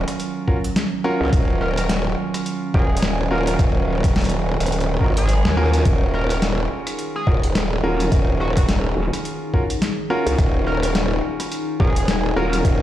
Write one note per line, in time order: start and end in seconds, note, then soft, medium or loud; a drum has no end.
0.00 12.82 D#3 medium
0.00 5.85 F#3 medium
0.00 0.45 C#4 medium
0.00 5.82 C#4 medium
0.00 0.45 F4 medium
0.00 0.45 F#4 medium
0.00 0.45 A#4 loud
0.08 cross-stick medium
0.08 closed hi-hat medium
0.20 closed hi-hat soft
0.47 0.56 C#4 medium
0.47 0.56 F4 medium
0.47 0.56 F#4 medium
0.47 0.56 A#4 medium
0.47 kick medium
0.64 closed hi-hat medium
0.76 snare loud
0.76 closed hi-hat medium
1.04 2.71 C#4 loud
1.04 2.71 F4 medium
1.04 2.71 F#4 medium
1.04 2.71 A#4 loud
1.21 1.31 C#2 loud
1.33 2.16 D#1 medium
1.33 kick loud
1.33 closed hi-hat medium
1.61 1.72 A#4 medium
1.61 cross-stick soft
1.77 1.85 A#4 medium
1.77 closed hi-hat medium
1.89 snare loud
1.89 closed hi-hat medium
2.34 cross-stick soft
2.34 closed hi-hat medium
2.46 closed hi-hat soft
2.74 3.29 D#1 loud
2.74 2.82 C#4 medium
2.74 2.82 F4 medium
2.74 2.82 F#4 medium
2.74 3.28 G#4 loud
2.74 2.82 A#4 medium
2.74 kick loud
2.97 closed hi-hat medium
3.02 snare loud
3.02 closed hi-hat medium
3.31 3.57 D#1 medium
3.31 4.98 C#4 medium
3.31 4.98 F4 medium
3.31 4.98 F#4 medium
3.31 4.98 A#4 loud
3.31 3.42 A#4 medium
3.47 3.55 A#4 medium
3.47 closed hi-hat medium
3.59 4.42 D#1 loud
3.59 kick loud
3.59 closed hi-hat medium
3.88 cross-stick soft
3.96 cross-stick soft
4.04 kick loud
4.04 cross-stick soft
4.04 closed hi-hat medium
4.10 cross-stick soft
4.16 snare loud
4.16 closed hi-hat soft
4.19 closed hi-hat soft
4.21 closed hi-hat soft
4.24 closed hi-hat soft
4.29 closed hi-hat soft
4.44 4.58 D#1 medium
4.60 4.99 D#1 medium
4.60 cross-stick soft
4.60 closed hi-hat medium
4.66 closed hi-hat soft
4.72 closed hi-hat soft
4.80 closed hi-hat soft
5.01 5.43 G#1 loud
5.01 5.09 C#4 medium
5.01 5.09 F4 medium
5.01 5.09 F#4 medium
5.01 5.09 A#4 medium
5.01 kick medium
5.17 5.74 G#4 loud
5.17 closed hi-hat medium
5.29 closed hi-hat soft
5.45 5.84 D#2 loud
5.45 snare loud
5.57 7.24 C#4 loud
5.57 7.24 F4 medium
5.57 7.24 F#4 medium
5.57 7.24 A#4 loud
5.73 closed hi-hat medium
5.85 6.69 D#1 loud
5.85 12.82 D#4 medium
5.85 12.82 G#4 medium
5.85 kick loud
5.85 closed hi-hat soft
6.14 6.24 A#4 medium
6.14 cross-stick soft
6.30 6.38 A#4 medium
6.30 closed hi-hat medium
6.42 snare loud
6.42 closed hi-hat medium
6.87 cross-stick soft
6.87 closed hi-hat medium
6.99 closed hi-hat soft
7.15 7.29 G#4 medium
7.27 7.82 D#1 medium
7.27 7.35 C#4 medium
7.27 7.35 F4 medium
7.27 7.35 F#4 medium
7.27 7.35 A#4 medium
7.27 kick loud
7.43 closed hi-hat medium
7.55 snare loud
7.55 closed hi-hat soft
7.83 8.10 D#1 medium
7.83 9.51 C#4 medium
7.83 9.51 F4 medium
7.83 9.51 F#4 medium
7.83 9.51 A#4 loud
8.00 closed hi-hat medium
8.12 8.95 D#1 medium
8.12 kick loud
8.12 closed hi-hat soft
8.40 8.51 F#4 medium
8.40 cross-stick soft
8.57 8.64 F#4 medium
8.57 kick loud
8.57 closed hi-hat medium
8.69 snare loud
8.69 closed hi-hat medium
8.97 9.11 D#1 medium
9.13 cross-stick soft
9.13 closed hi-hat medium
9.25 closed hi-hat soft
9.54 9.61 C#4 medium
9.54 9.61 F4 medium
9.54 9.61 F#4 medium
9.54 9.61 A#4 medium
9.54 kick medium
9.70 closed hi-hat medium
9.82 snare loud
9.82 closed hi-hat soft
10.10 11.77 C#4 loud
10.10 11.77 F4 medium
10.10 11.77 F#4 medium
10.10 11.77 A#4 loud
10.27 10.36 C#2 medium
10.27 closed hi-hat medium
10.38 11.21 D#1 loud
10.38 kick loud
10.38 closed hi-hat soft
10.67 10.77 A#4 medium
10.67 cross-stick soft
10.83 10.91 A#4 medium
10.83 closed hi-hat medium
10.95 snare loud
10.95 closed hi-hat soft
11.40 cross-stick medium
11.40 closed hi-hat medium
11.52 closed hi-hat medium
11.80 12.35 D#1 loud
11.80 11.88 C#4 medium
11.80 11.88 F4 medium
11.80 11.88 F#4 medium
11.80 12.34 G#4 loud
11.80 11.88 A#4 medium
11.80 kick loud
11.96 closed hi-hat medium
12.08 snare loud
12.08 closed hi-hat soft
12.36 12.63 D#1 medium
12.36 12.82 C#4 medium
12.36 12.82 F4 medium
12.36 12.82 F#4 medium
12.36 12.47 A#4 medium
12.36 12.82 A#4 loud
12.53 12.61 A#4 medium
12.53 closed hi-hat medium
12.65 12.82 D#1 loud
12.65 kick loud
12.65 closed hi-hat medium